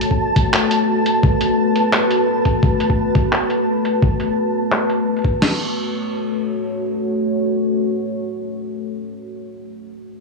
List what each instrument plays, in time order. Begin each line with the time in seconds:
Already playing: ambient pad A3 F#4 B4, synth texture A5
0.01 closed hi-hat
0.11 kick
0.36 kick, closed hi-hat
0.54 clap
0.71 closed hi-hat
1.06 closed hi-hat
1.23 kick
1.41 closed hi-hat
1.76 closed hi-hat
1.93 clap
2.11 closed hi-hat
2.45 kick, closed hi-hat
2.63 kick
2.80 closed hi-hat
2.90 kick
3.15 kick, closed hi-hat
3.33 clap
3.50 closed hi-hat
3.85 closed hi-hat
4.02 kick
4.20 closed hi-hat
4.72 clap
4.90 closed hi-hat
5.17 closed hi-hat
5.19 closed hi-hat
5.22 closed hi-hat
5.24 kick, closed hi-hat
5.42 ambient pad A3 F#4 C#5, snare, crash